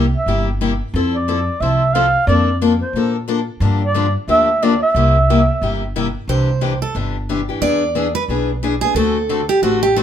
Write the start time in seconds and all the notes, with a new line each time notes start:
Already playing: C2
0.16 E5
0.26 G1 C3 G3 A#3 E4 G4
0.61 C3 G3 A#3 E4 G4
0.94 F2 F3 C4 E4 A4
1.15 D5
1.28 F3 C4 E4 A4
1.60 C2 F3 C4 E4 A4 E5
1.94 F3 C4 E4 A4 F5
2.27 F2 F3 A#3 D4 A4 D5
2.61 F3 A#3 D4 A4
2.81 C5
2.93 A#2 F3 A#3 D4 A4
3.28 F3 A#3 D4 A4
3.60 G2 D3 F3 A#3 D4 G4
3.84 D5
3.94 D3 F3 A#3 D4 G4
4.28 D2 D3 F3 A#3 D4 G4 E5
4.63 D3 F3 A#3 D4 G4 D5
4.82 E5
4.95 C2 C3 G3 A#3 E4 G4
5.30 C3 G3 A#3 E4 G4
5.61 G1 C3 G3 A#3 E4 G4
5.96 C3 G3 A#3 E4 G4
6.28 C2 C3 E3 D4 G4 C5
6.61 C3 E3 D4 G4
6.82 A4
6.95 G1 C3 E3 D4 G4
7.29 C3 E3 D4 G4
7.49 E3 D4 G4
7.61 E2 E3 B3 D4 G#4 D5
7.95 E3 B3 D4 G#4
8.15 B4
8.28 B1 E3 B3 D4 G#4
8.63 E3 B3 D4 G#4
8.81 B3 D4 G#4
8.94 D2 D3 A3 C4 F#4 A4
9.29 D3 A3 C4 F#4 A4
9.49 G4
9.62 A1 D3 A3 C4 F#4 A4
9.83 G4
9.96 D3 A3 C4 F#4 A4